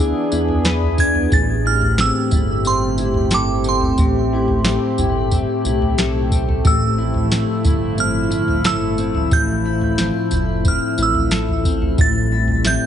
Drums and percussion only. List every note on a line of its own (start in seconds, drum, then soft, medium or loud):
0.32 tambourine medium
0.48 floor tom medium
0.65 snare loud
0.65 tambourine loud
0.82 floor tom medium
0.98 kick medium
0.98 tambourine medium
1.15 floor tom medium
1.32 kick loud
1.32 floor tom loud
1.32 tambourine medium
1.81 floor tom medium
1.98 snare loud
1.98 tambourine medium
2.31 kick loud
2.31 floor tom medium
2.31 tambourine medium
2.65 tambourine medium
2.98 tambourine medium
3.14 floor tom medium
3.31 snare loud
3.31 tambourine loud
3.64 tambourine medium
3.81 floor tom medium
3.98 kick loud
3.98 floor tom loud
3.98 tambourine medium
4.48 floor tom medium
4.64 snare loud
4.64 tambourine medium
4.98 floor tom medium
4.98 tambourine medium
5.31 kick medium
5.31 tambourine medium
5.65 tambourine medium
5.82 floor tom medium
5.98 snare loud
5.98 tambourine medium
6.31 kick medium
6.31 tambourine medium
6.49 floor tom medium
6.65 kick loud
6.65 floor tom loud
6.65 tambourine medium
7.14 floor tom medium
7.32 snare loud
7.32 tambourine loud
7.65 kick loud
7.65 floor tom medium
7.65 tambourine medium
7.98 tambourine medium
8.31 tambourine medium
8.48 floor tom medium
8.64 snare loud
8.64 tambourine loud
8.98 tambourine medium
9.15 floor tom medium
9.31 kick loud
9.31 floor tom loud
9.31 tambourine medium
9.81 floor tom medium
9.98 snare loud
9.98 tambourine loud
10.31 floor tom medium
10.31 tambourine medium
10.65 kick medium
10.65 tambourine medium
10.98 tambourine medium
11.14 floor tom medium
11.31 snare loud
11.31 tambourine loud
11.48 floor tom medium
11.65 kick medium
11.65 tambourine medium
11.82 floor tom medium
11.98 kick loud
11.98 floor tom loud
11.98 tambourine medium
12.48 floor tom medium
12.64 snare loud
12.64 tambourine loud